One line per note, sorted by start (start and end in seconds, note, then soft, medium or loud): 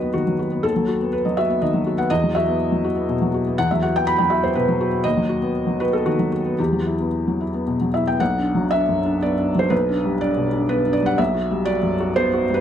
0.00 0.60 D#2 soft
0.00 0.27 F#3 soft
0.00 0.02 B3 soft
0.00 0.21 B3 soft
0.00 0.14 F#4 soft
0.00 0.14 B4 medium
0.00 0.66 D#5 medium
0.14 0.34 D#3 soft
0.14 0.38 F#4 medium
0.27 0.46 F#3 soft
0.39 0.59 F#4 soft
0.52 0.71 B3 soft
0.63 2.06 D#2 soft
0.63 1.12 A4 medium
0.76 0.96 F#3 soft
0.88 1.08 F#4 soft
1.01 1.40 B3 soft
1.13 1.25 B4 medium
1.25 1.45 F#3 soft
1.25 1.37 D#5 soft
1.37 1.57 F#4 soft
1.37 1.61 E5 medium
1.50 1.69 B3 soft
1.62 1.81 D#3 soft
1.62 1.98 D#5 medium
1.74 1.93 F#3 soft
1.87 2.05 F#4 soft
1.98 2.10 B3 soft
1.98 2.10 F#5 medium
2.10 3.54 E2 medium
2.10 2.35 D#5 medium
2.24 2.43 F#3 soft
2.35 2.55 F#4 soft
2.35 3.57 E5 medium
2.48 2.86 B3 soft
2.72 2.91 F#3 soft
2.84 3.03 F#4 soft
2.96 3.15 B3 soft
3.09 3.28 B2 soft
3.22 3.41 F#3 soft
3.34 3.53 F#4 soft
3.47 3.65 B3 soft
3.58 5.02 E2 medium
3.58 3.70 F#5 medium
3.71 3.90 F#3 soft
3.71 3.83 E5 medium
3.83 4.02 F#4 soft
3.83 3.94 F#5 medium
3.96 4.34 B3 soft
3.96 4.07 G5 medium
4.07 4.19 B5 loud
4.18 4.38 F#3 soft
4.18 4.31 G5 medium
4.30 4.50 F#4 medium
4.30 4.42 E5 medium
4.44 4.63 B3 soft
4.44 4.55 C5 medium
4.55 4.76 B2 soft
4.55 5.05 B4 medium
4.68 4.88 F#3 soft
4.81 5.00 F#4 soft
4.92 5.05 B3 soft
5.04 6.55 D#2 medium
5.04 5.80 D#5 medium
5.17 5.37 F#3 soft
5.29 5.50 F#4 soft
5.42 5.83 B3 soft
5.67 5.88 F#3 soft
5.80 6.01 F#4 soft
5.80 5.93 B4 medium
5.93 6.14 B3 soft
5.93 6.06 A4 medium
6.06 6.27 D#3 soft
6.06 6.31 F#4 medium
6.19 6.40 F#3 soft
6.32 6.53 F#4 soft
6.46 6.59 B3 soft
6.58 8.16 E2 soft
6.58 7.93 G4 medium
6.73 6.94 F#3 soft
6.86 7.07 E4 soft
7.00 7.43 B3 soft
7.28 7.48 F#3 soft
7.41 7.62 E4 soft
7.54 7.75 B3 soft
7.67 7.88 B2 soft
7.81 8.02 F#3 soft
7.94 8.15 E4 soft
7.94 8.07 E5 medium
8.07 8.20 B3 soft
8.07 8.20 G5 medium
8.20 9.68 B1 medium
8.20 8.71 F#5 medium
8.38 8.65 D4 soft
8.55 8.81 F#3 soft
8.71 8.98 D4 soft
8.71 9.21 E5 medium
8.89 9.15 F#2 soft
9.05 9.32 D4 soft
9.22 9.49 B3 soft
9.22 9.60 D5 medium
9.38 9.65 D4 soft
9.55 9.72 F#3 soft
9.55 9.71 C5 medium
9.70 11.14 B1 medium
9.70 10.20 B4 medium
9.89 10.14 D4 soft
10.04 10.30 G3 soft
10.21 10.47 D4 medium
10.21 10.70 D5 medium
10.37 10.63 B2 soft
10.53 10.79 D4 soft
10.69 10.96 B3 soft
10.69 10.94 B4 medium
10.86 11.13 D4 soft
10.93 11.06 D5 medium
11.02 11.19 G3 soft
11.02 11.19 F#5 medium
11.18 12.61 B1 medium
11.18 11.67 E5 medium
11.34 11.61 F#4 soft
11.51 11.77 G3 soft
11.65 11.93 F#4 medium
11.65 12.16 D5 medium
11.83 12.10 F#2 soft
12.00 12.27 F#4 medium
12.16 12.43 B3 medium
12.16 12.54 C5 medium
12.33 12.60 F#4 medium
12.50 12.61 G3 medium
12.54 12.61 B4 medium